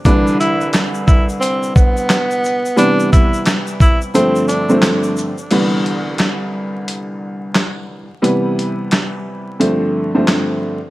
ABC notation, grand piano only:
X:1
M:4/4
L:1/16
Q:"Swing 16ths" 1/4=88
K:C
V:1 name="Grand piano" clef=bass
[C,,D,E,G,B]12- [C,,D,E,G,B]3 z | [C,E,G,B,]8 [G,,D,F,A,C]3 [G,,D,F,A,C]4 z | [C,,D,E,G,B,]12- [C,,D,E,G,B,]3 z | [C,E,G,B,]8 [G,,D,F,A,C]3 [G,,D,F,A,C]4 z |]